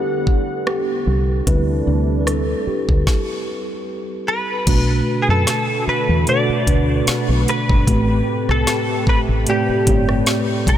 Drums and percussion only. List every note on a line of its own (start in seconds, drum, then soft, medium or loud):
0.27 kick medium
0.67 cross-stick loud
1.47 kick loud
1.47 closed hi-hat medium
2.27 cross-stick loud
2.27 closed hi-hat medium
2.89 kick medium
3.07 kick loud
3.07 snare medium
4.67 kick loud
4.67 closed hi-hat medium
4.67 crash medium
5.47 snare loud
5.47 closed hi-hat medium
6.27 closed hi-hat medium
6.67 kick medium
6.67 closed hi-hat medium
7.07 snare loud
7.07 closed hi-hat medium
7.48 closed hi-hat medium
7.69 kick medium
7.87 kick loud
7.87 closed hi-hat medium
8.49 cross-stick medium
8.67 snare loud
8.67 closed hi-hat medium
9.07 kick medium
9.47 closed hi-hat medium
9.87 kick medium
9.87 closed hi-hat medium
10.09 cross-stick medium
10.26 snare loud
10.26 closed hi-hat medium
10.67 kick medium
10.67 closed hi-hat medium